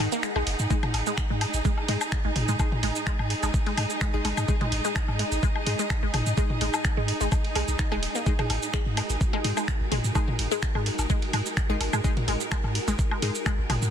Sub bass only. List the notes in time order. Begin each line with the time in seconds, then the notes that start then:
0.36 A#1
0.47 F#1
0.59 G#2
0.94 G#1
1.30 G#2
1.54 G#1
1.89 G#2
2.25 G#1
2.36 G#1
2.48 G#2
2.83 G#1
3.19 G#2
3.43 G#1
3.78 G#2
4.14 G#1
4.25 G#1
4.37 G#2
4.72 G#1
5.08 G#2
5.32 G#1
5.67 G#2
6.03 G#1
6.14 G#1
6.26 G#2
6.61 G#1
6.97 G#2
7.21 G#1
7.56 B1
7.68 B1
7.92 D#1
8.50 G#1
8.86 G#2
9.10 G#1
9.44 G#2
9.81 G#1
9.92 G#1
10.04 G#2
10.39 G#1
10.75 G#2
10.99 G#1
11.33 G#2
11.70 G#1
11.81 G#1
11.93 G#2
12.28 G#1
12.64 G#2
12.88 G#1
13.22 G#2
13.59 G#1
13.70 G#1
13.82 G#2